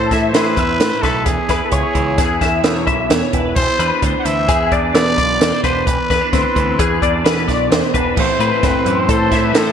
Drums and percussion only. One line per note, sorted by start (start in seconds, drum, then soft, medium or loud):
0.11 kick medium
0.11 snare soft
0.11 closed hi-hat medium
0.34 snare loud
0.34 closed hi-hat medium
0.57 kick medium
0.57 closed hi-hat medium
0.80 snare loud
0.80 closed hi-hat loud
1.03 kick medium
1.03 snare soft
1.03 closed hi-hat medium
1.26 kick loud
1.26 closed hi-hat loud
1.49 kick medium
1.49 snare soft
1.49 closed hi-hat medium
1.72 kick medium
1.72 closed hi-hat loud
1.95 kick medium
1.95 closed hi-hat medium
2.18 kick loud
2.18 snare soft
2.18 closed hi-hat loud
2.41 kick medium
2.41 snare soft
2.41 closed hi-hat medium
2.64 snare loud
2.64 closed hi-hat medium
2.87 kick medium
2.87 closed hi-hat medium
3.10 snare loud
3.10 closed hi-hat loud
3.33 kick medium
3.33 closed hi-hat medium
3.56 kick loud
3.56 crash loud
3.80 closed hi-hat medium
4.02 kick medium
4.02 closed hi-hat medium
4.25 closed hi-hat medium
4.49 kick loud
4.49 closed hi-hat loud
4.72 kick medium
4.72 closed hi-hat medium
4.95 snare loud
4.95 closed hi-hat medium
5.18 kick medium
5.18 closed hi-hat medium
5.41 snare loud
5.41 closed hi-hat loud
5.64 kick medium
5.64 closed hi-hat medium
5.87 kick loud
5.87 closed hi-hat loud
6.10 kick medium
6.10 snare soft
6.10 closed hi-hat medium
6.33 kick loud
6.33 snare soft
6.33 closed hi-hat medium
6.56 kick medium
6.56 closed hi-hat medium
6.79 kick loud
6.79 closed hi-hat loud
7.02 kick medium
7.02 closed hi-hat medium
7.26 snare loud
7.26 closed hi-hat medium
7.48 kick medium
7.48 snare soft
7.48 closed hi-hat medium
7.72 snare loud
7.72 closed hi-hat loud
7.94 kick medium
7.94 closed hi-hat medium
8.17 kick loud
8.17 crash loud
8.40 closed hi-hat medium
8.63 kick loud
8.63 snare soft
8.63 closed hi-hat medium
8.86 closed hi-hat medium
9.09 kick loud
9.09 closed hi-hat loud
9.32 kick medium
9.32 snare soft
9.32 closed hi-hat medium
9.55 snare loud
9.55 closed hi-hat medium